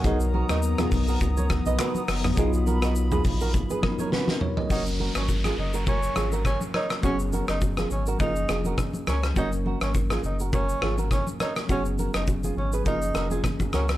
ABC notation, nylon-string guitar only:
X:1
M:4/4
L:1/16
Q:"Swing 16ths" 1/4=103
K:F#
V:1 name="Nylon-string guitar"
[DG] z [FA] [DF] z [EG] z [FA] z [Ac] z [Bd] [FB]2 z2 | [DG] z [FA] [DF] z [EG] z [FA] z [GB] z [Ac] [FB]2 z2 | [CF] z [FA] z2 [EG] z [FA] [FA] z [EG] [FA] z2 [Ac] z | [CF] z [FA] z2 [EG] z [FA] [EA] z [EG] [FA] z2 [Ac] z |
[CF] z [FA] z2 [EG] z [FA] [FA] z [EG] [FA] z2 [Ac] z | [CF] z [FA] z2 [EG] z [GB] [EA] z [FA] [EG] z2 [FA] z |]